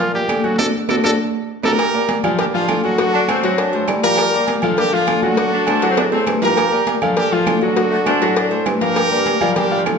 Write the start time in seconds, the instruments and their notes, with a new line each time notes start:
Already playing: bassoon A#2, trumpet F4
0.14 grand piano A#3 A#4 D5, trumpet G4, high conga
0.29 bassoon D3, cowbell, high conga, low agogo, claves
0.44 grand piano F#3 F#4 F#5, trumpet F#4, high conga, low agogo
0.59 bassoon D2, grand piano D4 F#4 A4, trumpet A4, cowbell, high conga, high timbale, claves
0.89 bassoon D2, grand piano D4 F#4 A4, trumpet A4, cowbell, high conga, high timbale, claves
1.04 bassoon D2, grand piano D4 F#4 A4, trumpet A4, cowbell, high conga, high timbale, claves
1.63 bassoon D2, grand piano D4 F#4 A4, horn section G4 A#4, trumpet A4, cowbell, high conga, high timbale, claves
1.79 cowbell, high conga, low agogo, claves
1.94 grand piano A#3 A#4 D5, high conga
2.09 cowbell, high conga, low agogo
2.23 grand piano F3 F4 F5, bassoon G3, high conga, low conga, low agogo, claves
2.39 grand piano A#3 A#4 D5, horn section D4 G4, cowbell, high conga, low agogo
2.54 grand piano F3 F4 F5, horn section D4 F4, high conga
2.68 bassoon D3, cowbell, high conga, low timbale, low agogo, claves
2.84 grand piano F#3 F#4 F#5, horn section D4 F#4, low agogo
2.98 grand piano F#3 F#4 F#5, cowbell, high conga
3.13 saxophone section D4, high conga
3.28 grand piano A3 A4 C5, saxophone section C4, cowbell, high conga, low agogo, claves
3.43 bassoon F#3, grand piano F#3 F#4 F#5, cowbell, high conga
3.58 saxophone section D4, cowbell, high conga, low agogo
3.73 grand piano A3 A4 C5, high conga, low agogo
3.88 bassoon G3, cowbell, high conga, low timbale, low agogo, claves
4.03 grand piano F3 F4 F5, horn section G4 A#4, cowbell, high conga
4.17 cowbell, high conga, low agogo, claves
4.33 grand piano A#3 A#4 D5, high conga
4.47 cowbell, high conga, low agogo
4.62 bassoon D3, grand piano F3 F4 F5, high conga, low conga, low agogo, claves
4.77 grand piano A#3 A#4 D5, horn section D4 G4, cowbell, high conga, low agogo
4.93 grand piano F3 F4 F5, horn section D4 F4, high conga
5.07 bassoon D3, cowbell, high conga, low agogo, claves
5.22 grand piano F#3 F#4 F#5, horn section D4 F#4, high conga, low agogo
5.37 grand piano F#3 F#4 F#5, cowbell, high conga
5.53 saxophone section D4, high conga
5.67 grand piano A3 A4 C5, saxophone section D4, cowbell, high conga, low agogo, claves
5.82 bassoon A2, grand piano F#3 F#4 F#5, cowbell, high conga
5.90 saxophone section C4
5.97 saxophone section D4, cowbell, high conga, high timbale, low agogo
6.12 grand piano A3 A4 C5, saxophone section C4, high conga, high timbale, low agogo
6.27 bassoon G2, cowbell, high conga, low agogo, claves
6.42 grand piano F3 F4 F5, horn section G4 A#4, cowbell, high conga, low timbale
6.57 cowbell, high conga, low agogo, claves
6.72 grand piano A#3 A#4 D5, high conga
6.87 cowbell, high conga, low agogo
7.01 bassoon D3, grand piano F3 F4 F5, high conga, low conga, low agogo, claves
7.16 grand piano A#3 A#4 D5, horn section D4 G4, cowbell, high conga, low agogo
7.32 grand piano F3 F4 F5, horn section D4 F4, high conga
7.46 bassoon D3, cowbell, high conga, low timbale, low agogo, claves
7.61 grand piano F#3 F#4 F#5, horn section D4 F#4, low agogo
7.76 grand piano F#3 F#4 F#5, cowbell, high conga
7.91 saxophone section A3, high conga
8.06 grand piano A3 A4 C5, saxophone section D4, cowbell, high conga, low agogo, claves
8.21 bassoon A2, grand piano F#3 F#4 F#5, cowbell, high conga
8.36 saxophone section D4, cowbell, high conga, low agogo
8.51 grand piano A3 A4 C5, high conga, low agogo
8.66 bassoon G2, cowbell, high conga, low timbale, low agogo, claves
8.81 grand piano F3 F4 F5, horn section G4 A#4, cowbell, high conga
8.96 cowbell, high conga, low agogo, claves
9.11 grand piano A#3 A#4 D5, high conga
9.26 cowbell, high conga, low agogo
9.41 grand piano F3 F4 F5, bassoon G3, high conga, low conga, low agogo, claves
9.56 grand piano A#3 A#4 D5, horn section D4 G4, cowbell, high conga, low conga, low agogo
9.71 grand piano F3 F4 F5, high conga
9.86 bassoon D3, cowbell, high conga, low timbale, low agogo, claves